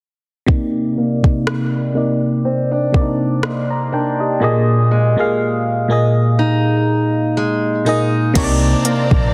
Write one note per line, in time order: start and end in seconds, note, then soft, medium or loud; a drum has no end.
0.46 1.13 C3 medium
0.46 4.41 C3 medium
0.46 1.14 A#3 medium
0.46 1.14 D#4 medium
0.46 kick loud
0.97 3.43 A#3 medium
1.22 1.86 C3 medium
1.22 1.87 A#3 medium
1.22 1.87 D#4 medium
1.22 kick medium
1.26 1.88 D5 medium
1.47 cross-stick loud
1.94 2.82 C3 medium
1.94 2.82 A#3 medium
1.94 2.83 D#4 medium
1.94 2.83 D5 medium
2.45 2.71 C4 medium
2.71 3.91 D4 medium
2.92 4.23 C3 medium
2.92 4.24 A#3 medium
2.92 3.02 D4 medium
2.92 kick medium
2.96 3.45 D5 medium
3.02 4.28 D#4 medium
3.43 4.91 A#3 medium
3.43 3.69 D#5 soft
3.43 3.69 C6 medium
3.43 cross-stick loud
3.70 3.92 D5 medium
3.70 3.92 A#5 medium
3.92 4.52 D4 medium
3.92 4.19 A#4 medium
3.92 4.18 G5 medium
4.20 4.67 G4 medium
4.20 4.43 D#5 medium
4.40 5.06 A#2 medium
4.40 8.35 A#2 medium
4.40 5.07 A#3 medium
4.40 5.08 G#4 medium
4.44 5.08 D#5 loud
4.91 7.36 G#3 medium
5.16 5.80 A#2 medium
5.16 5.81 A#3 medium
5.16 5.81 G#4 medium
5.16 5.82 F5 medium
5.88 7.62 A#2 medium
5.88 7.63 A#3 medium
5.88 7.63 G#4 medium
5.88 7.64 D#5 medium
6.39 7.86 D#4 medium
7.37 8.46 G#3 medium
7.85 8.29 A#2 medium
7.85 8.30 A#3 medium
7.85 8.36 D#4 medium
7.85 8.30 G#4 medium
7.85 8.31 D#5 medium
8.34 8.73 C2 loud
8.34 9.34 C3 loud
8.34 9.34 C3 medium
8.34 9.34 A#3 medium
8.34 9.34 C4 medium
8.34 9.33 D4 medium
8.34 9.34 D#4 medium
8.34 9.34 C5 medium
8.34 8.44 C#5 medium
8.34 9.34 D5 medium
8.34 9.34 A#5 medium
8.34 kick medium
8.34 closed hi-hat medium
8.34 crash medium
8.44 9.34 D5 loud
8.85 9.34 A#3 medium
8.85 closed hi-hat medium
9.11 9.34 A#1 medium
9.11 kick medium